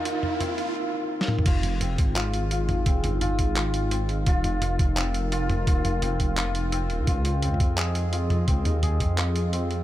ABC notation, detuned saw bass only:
X:1
M:4/4
L:1/16
Q:"Swing 16ths" 1/4=171
K:Fm
V:1 name="Detuned saw bass" clef=bass
z16 | F,,,6 A,,,8- A,,,2 | F,,,2 G,,,4 A,,,8- A,,,2 | E,,,2 F,,,4 F,,,8- F,,,2 |
E,,,2 F,,,4 F,,,8 E,,, D,, | D,,6 F,,8- F,,2 | D,,2 E,,4 F,,8- F,,2 |]